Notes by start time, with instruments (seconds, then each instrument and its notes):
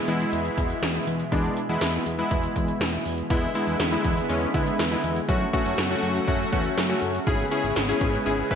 Already playing: analog synth pad B2 E3 G#3 E4
0.08 analog synth bass E2, synth keys G#3 B3 E4, closed hi-hat
0.20 closed hi-hat
0.33 analog synth bass E2, closed hi-hat
0.45 closed hi-hat
0.58 analog synth bass E2, kick, closed hi-hat
0.70 closed hi-hat
0.82 analog synth bass E2, snare, closed hi-hat
0.95 closed hi-hat
1.07 analog synth bass E2, closed hi-hat
1.20 closed hi-hat
1.32 analog synth bass E2, synth keys G#3 B3 D4, kick, closed hi-hat
1.44 closed hi-hat
1.57 closed hi-hat
1.69 analog synth bass E2, synth keys G#3 B3 E4, closed hi-hat
1.81 analog synth bass E2, snare, closed hi-hat
1.94 closed hi-hat
2.06 analog synth bass E2, closed hi-hat
2.19 synth keys G#3 B3 E4, closed hi-hat
2.31 analog synth bass E2, kick, closed hi-hat
2.43 closed hi-hat
2.56 analog synth bass E2, kick, closed hi-hat
2.68 closed hi-hat
2.81 analog synth bass E2, snare, closed hi-hat
2.93 closed hi-hat
3.05 analog synth bass E2, open hi-hat
3.18 closed hi-hat
3.30 analog synth bass E2, analog synth pad D3 G#3 B3 E4, synth keys G#3 B3 E4, kick, closed hi-hat, crash
3.55 synth keys G#3 B3 E4, closed hi-hat
3.67 analog synth bass E2, closed hi-hat
3.80 analog synth bass E2, snare, closed hi-hat
3.92 synth keys G#3 B3 E4
4.04 analog synth bass E2, kick, closed hi-hat
4.17 closed hi-hat
4.29 analog synth bass E2, synth keys G#3 B3 C#4, closed hi-hat
4.54 analog synth bass D2, synth keys G#3 B3 E4, kick, closed hi-hat
4.67 closed hi-hat
4.79 analog synth bass E2, snare, closed hi-hat
4.91 synth keys G#3 B3 E4
5.04 analog synth bass E2, closed hi-hat
5.16 closed hi-hat
5.29 analog synth bass F#2, analog synth pad C#3 F#3 A3 F#4, synth keys A3 C#4 F#4, kick, closed hi-hat
5.53 synth keys A3 C#4 F#4, kick, closed hi-hat
5.66 analog synth bass F#2, closed hi-hat
5.78 analog synth bass F#2, snare, closed hi-hat
5.91 synth keys A3 C#4 F#4
6.03 analog synth bass F#2, closed hi-hat
6.15 closed hi-hat
6.28 analog synth bass F#2, synth keys A3 C#4 F#4, kick, closed hi-hat
6.52 analog synth bass E2, synth keys A3 C#4 F#4, kick, closed hi-hat
6.65 closed hi-hat
6.77 analog synth bass F#2, snare, closed hi-hat
6.89 synth keys A3 C#4 F#4
7.02 analog synth bass F#2, closed hi-hat
7.15 closed hi-hat
7.27 analog synth bass G#1, analog synth pad G#3 B3 E4, synth keys C#4 E4 G#4, kick, closed hi-hat
7.51 synth keys C#4 E4 G#4, closed hi-hat
7.64 analog synth bass G#1, closed hi-hat
7.76 analog synth bass G#1, snare, closed hi-hat
7.89 synth keys C#4 E4 G#4
8.01 analog synth bass G#1, kick, closed hi-hat
8.14 closed hi-hat
8.26 analog synth bass G#1, synth keys C#4 E4 G#4, closed hi-hat
8.51 analog synth bass F#1, synth keys C#4 E4 B4, kick, closed hi-hat